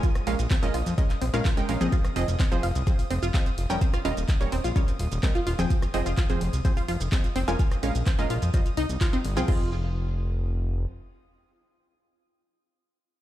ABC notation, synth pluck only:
X:1
M:4/4
L:1/16
Q:1/4=127
K:Fm
V:1 name="Synth pluck"
[A,DBa]2 [A,DBf] z2 [A,DBe] z2 [A,DBe] z2 [A,DBf] z [A,DBg] [A,DBf] [F,CAe]- | [F,CAe]2 [F,CAe] z2 [F,CAc] z2 [F,CAc] z3 [F,CAe] z2 [G,DBg]- | [G,DBg]2 [G,DBe] z2 [G,DBd] z2 [G,DBd] z3 [G,DBe] z2 [F,CAg]- | [F,CAg]2 [F,CAe] z2 [F,CAc] z2 [F,CAc] z3 [F,CAe] z2 [A,DBa]- |
[A,DBa]2 [A,DBf] z2 [A,DBe] z2 [G,Fce] z3 [G,Fcf] z2 [F,CAg] | [F,CAe]16- | [F,CAe]16 |]